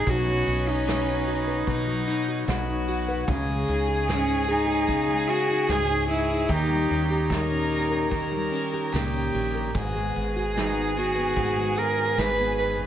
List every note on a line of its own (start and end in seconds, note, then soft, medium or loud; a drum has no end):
0.00 0.11 G#4 medium
0.06 0.44 B1 loud
0.06 0.86 B2 medium
0.06 0.26 F#3 medium
0.06 1.67 C#4 loud
0.06 0.48 D#4 medium
0.06 3.24 F#4 medium
0.06 0.71 F#4 medium
0.06 9.70 C#5 medium
0.06 3.24 D#5 medium
0.06 3.24 B5 medium
0.06 kick medium
0.06 ride medium
0.27 1.86 F#3 medium
0.47 2.03 B1 medium
0.47 1.09 D#4 soft
0.47 ride medium
0.68 2.28 D#4 medium
0.68 1.26 F#4 medium
0.87 1.66 B2 medium
0.87 snare medium
0.87 ride medium
1.09 2.07 D#4 medium
1.27 2.27 F#4 medium
1.27 ride soft
1.48 3.07 B4 medium
1.67 2.46 B2 medium
1.67 2.43 D#4 medium
1.67 kick medium
1.67 ride medium
1.87 3.27 F#3 medium
2.07 2.69 D#4 medium
2.07 ride medium
2.28 2.87 F#4 medium
2.47 3.24 B1 medium
2.47 3.23 B2 medium
2.47 3.29 F#4 medium
2.47 snare medium
2.47 ride medium
2.69 3.31 D#4 medium
2.88 3.23 F#4 medium
2.88 ride soft
3.08 3.23 B4 medium
3.28 3.65 C#2 loud
3.28 4.08 C#3 medium
3.28 6.51 G#4 loud
3.28 9.71 D#5 medium
3.28 6.46 G#5 medium
3.28 kick medium
3.28 ride medium
3.49 5.07 G#3 medium
3.68 5.25 C#2 medium
3.68 4.28 D#4 soft
3.68 ride soft
3.88 4.47 G#4 medium
4.07 4.88 G#2 medium
4.07 snare medium
4.07 ride medium
4.12 4.47 C#4 medium
4.28 5.29 D#4 medium
4.48 5.31 D#4 loud
4.48 4.66 G#4 medium
4.48 ride soft
4.67 6.49 G#4 medium
4.87 5.68 C#3 medium
4.87 kick medium
4.87 ride medium
5.08 6.44 G#3 medium
5.29 5.49 D#4 medium
5.29 5.71 F#4 loud
5.29 ride soft
5.50 5.90 D#4 medium
5.68 6.45 C#2 medium
5.68 6.50 G#2 medium
5.68 6.09 G#4 loud
5.68 snare medium
5.68 ride medium
5.90 6.10 D#4 medium
6.09 6.30 D#4 medium
6.09 6.53 E4 medium
6.09 ride soft
6.31 6.90 D#4 medium
6.49 6.87 D#2 medium
6.49 8.10 D#3 medium
6.49 7.11 D#4 medium
6.49 7.31 G4 loud
6.49 9.71 G4 medium
6.49 9.71 A#5 medium
6.49 kick medium
6.49 ride medium
6.69 8.30 G3 medium
6.90 8.49 D#2 medium
6.90 7.51 C#4 soft
6.90 ride medium
7.10 8.69 D#4 medium
7.10 7.71 G4 medium
7.30 8.12 A#2 medium
7.30 8.10 A#4 loud
7.30 kick medium
7.30 snare medium
7.30 ride medium
7.52 8.50 C#4 soft
7.71 8.72 G4 medium
7.71 ride soft
7.91 9.54 A#4 medium
8.11 9.69 D#3 medium
8.11 8.94 A#4 loud
8.11 kick medium
8.11 ride medium
8.32 9.69 G3 medium
8.52 9.12 C#4 medium
8.52 ride medium
8.73 9.34 G4 soft
8.93 9.30 C#2 medium
8.93 9.70 A#2 medium
8.93 9.77 G4 medium
8.93 snare medium
8.93 ride medium
9.14 9.70 C#4 soft
9.34 9.71 A#1 medium
9.34 9.70 G4 soft
9.34 ride soft
9.55 9.70 A#4 medium
9.74 10.12 G#1 loud
9.74 11.35 G#2 medium
9.74 12.87 B3 medium
9.74 12.87 F#4 medium
9.74 12.87 G#4 loud
9.74 12.87 D#5 medium
9.74 12.87 G#5 medium
9.74 kick medium
9.74 ride medium
9.95 11.56 G#3 medium
10.15 11.73 G#1 medium
10.15 10.76 B3 soft
10.15 ride soft
10.36 11.97 F#4 medium
10.55 12.17 D#3 medium
10.55 10.94 D#4 medium
10.55 snare medium
10.55 ride medium
10.77 10.96 B3 medium
10.97 11.16 B3 medium
10.97 11.81 F#4 medium
10.97 ride medium
11.18 11.77 B3 medium
11.37 12.77 G#2 medium
11.37 kick medium
11.37 ride medium
11.57 12.87 G#3 medium
11.78 12.38 B3 medium
11.78 12.20 A#4 medium
11.78 ride medium
11.99 12.87 F#4 medium
12.17 12.87 G#1 medium
12.17 12.87 D#3 medium
12.17 12.58 B4 loud
12.17 snare medium
12.17 ride medium
12.40 12.87 B3 medium
12.58 12.87 B4 medium
12.58 ride soft
12.80 12.87 G#2 medium